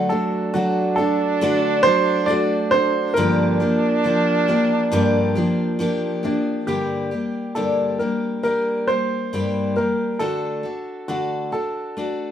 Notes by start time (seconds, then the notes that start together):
Already playing: D3 F#3 A3 D4 F#4
0.09 A3 D4 F#4 A4
0.54 F#3 A3 D4 F#4 A4
0.96 D4 F#4 A4
1.00 D4
1.41 D3 A3 D4 F#4 A4
1.83 F#3 F#4 A4 C5
1.88 D4
2.26 A3 D4 F#4 D5
2.30 A3 A4
2.71 D4 F#4 A4 C5
3.14 G2 D3 F3 D4 A#4
3.18 F3 A#3 D4 G4
3.60 F3 A#3 D4 G4
4.04 F3 A#3 D4 G4
4.48 F3 A#3 D4 G4
4.92 G2 D3 F3 A#3 D4 G4
5.35 F3 A#3 D4 G4
5.79 F3 A#3 D4 G4
6.23 F3 A#3 D4 G4
6.67 G2 D3 G3 A#3 D4 G4
7.11 G3 A#3 D4 G4
7.55 G2 D3 G3 A#3 D4 G4 A4
7.99 G3 A#3 D4 G4 A#4
8.43 G3 A#3 D4 G4 A#4
8.88 G3 A#3 D4 G4 C5
9.33 G2 D3 G3 A#3 D4 G4
9.76 G3 A#3 D4 G4 A#4
10.19 D3 A3 D4 F#4 A4
10.63 D4 F#4 A4
11.08 D3 A3 D4 F#4 A4
11.52 D4 F#4 A4
11.97 A3 D4 F#4 A4